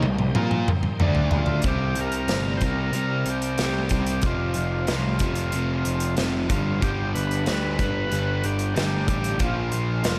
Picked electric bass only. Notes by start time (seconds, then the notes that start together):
0.04 C2
0.35 A#2
0.68 muted picked electric bass stroke
1.00 D2
1.64 C2
1.96 C2
2.28 G1
2.61 C2
2.92 C2
3.26 C2
3.59 C2
3.91 C2
4.22 F1
4.57 F1
4.89 C2
5.20 F1
5.54 F1
5.86 F1
6.18 F1
6.49 G1
6.82 G1
7.16 G1
7.48 D2
7.80 G1
8.12 G1
8.44 G1
8.77 G1
9.07 A1
9.40 A#1
9.73 A#1
10.06 F1